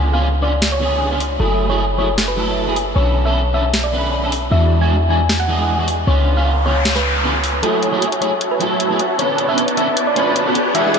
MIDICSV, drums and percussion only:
0, 0, Header, 1, 2, 480
1, 0, Start_track
1, 0, Key_signature, 3, "minor"
1, 0, Tempo, 389610
1, 1725, Time_signature, 4, 2, 24, 8
1, 13537, End_track
2, 0, Start_track
2, 0, Title_t, "Drums"
2, 763, Note_on_c, 9, 38, 117
2, 886, Note_off_c, 9, 38, 0
2, 1484, Note_on_c, 9, 46, 83
2, 1607, Note_off_c, 9, 46, 0
2, 2684, Note_on_c, 9, 38, 114
2, 2807, Note_off_c, 9, 38, 0
2, 3405, Note_on_c, 9, 46, 85
2, 3528, Note_off_c, 9, 46, 0
2, 4602, Note_on_c, 9, 38, 109
2, 4726, Note_off_c, 9, 38, 0
2, 5324, Note_on_c, 9, 46, 88
2, 5447, Note_off_c, 9, 46, 0
2, 6522, Note_on_c, 9, 38, 112
2, 6646, Note_off_c, 9, 38, 0
2, 7242, Note_on_c, 9, 46, 90
2, 7365, Note_off_c, 9, 46, 0
2, 8443, Note_on_c, 9, 38, 111
2, 8566, Note_off_c, 9, 38, 0
2, 8569, Note_on_c, 9, 38, 33
2, 8693, Note_off_c, 9, 38, 0
2, 9161, Note_on_c, 9, 46, 93
2, 9284, Note_off_c, 9, 46, 0
2, 9401, Note_on_c, 9, 42, 81
2, 9524, Note_off_c, 9, 42, 0
2, 9641, Note_on_c, 9, 42, 65
2, 9765, Note_off_c, 9, 42, 0
2, 9882, Note_on_c, 9, 42, 76
2, 10006, Note_off_c, 9, 42, 0
2, 10008, Note_on_c, 9, 42, 62
2, 10123, Note_off_c, 9, 42, 0
2, 10123, Note_on_c, 9, 42, 65
2, 10247, Note_off_c, 9, 42, 0
2, 10361, Note_on_c, 9, 42, 82
2, 10485, Note_off_c, 9, 42, 0
2, 10602, Note_on_c, 9, 42, 66
2, 10725, Note_off_c, 9, 42, 0
2, 10841, Note_on_c, 9, 42, 80
2, 10964, Note_off_c, 9, 42, 0
2, 11081, Note_on_c, 9, 42, 68
2, 11204, Note_off_c, 9, 42, 0
2, 11322, Note_on_c, 9, 42, 80
2, 11445, Note_off_c, 9, 42, 0
2, 11561, Note_on_c, 9, 42, 67
2, 11684, Note_off_c, 9, 42, 0
2, 11800, Note_on_c, 9, 42, 80
2, 11923, Note_off_c, 9, 42, 0
2, 11926, Note_on_c, 9, 42, 64
2, 12041, Note_off_c, 9, 42, 0
2, 12041, Note_on_c, 9, 42, 66
2, 12164, Note_off_c, 9, 42, 0
2, 12280, Note_on_c, 9, 42, 84
2, 12403, Note_off_c, 9, 42, 0
2, 12521, Note_on_c, 9, 42, 67
2, 12644, Note_off_c, 9, 42, 0
2, 12761, Note_on_c, 9, 42, 81
2, 12885, Note_off_c, 9, 42, 0
2, 13001, Note_on_c, 9, 42, 70
2, 13124, Note_off_c, 9, 42, 0
2, 13242, Note_on_c, 9, 42, 80
2, 13365, Note_off_c, 9, 42, 0
2, 13482, Note_on_c, 9, 42, 65
2, 13537, Note_off_c, 9, 42, 0
2, 13537, End_track
0, 0, End_of_file